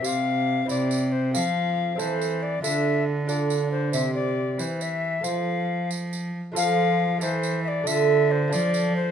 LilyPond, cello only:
\new Staff \with { instrumentName = "Cello" } { \clef bass \time 6/8 \key f \major \tempo 4. = 92 c4. c4. | f4. e4. | d2. | c4. e4. |
f2~ f8 r8 | f4. e4. | d4. f4. | }